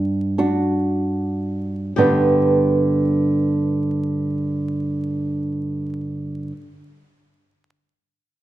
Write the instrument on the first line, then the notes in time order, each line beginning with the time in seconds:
nylon-string guitar
Already playing: G2 D4
0.38 D4 F#4
1.97 G2 D3 B3 D4 G4 B4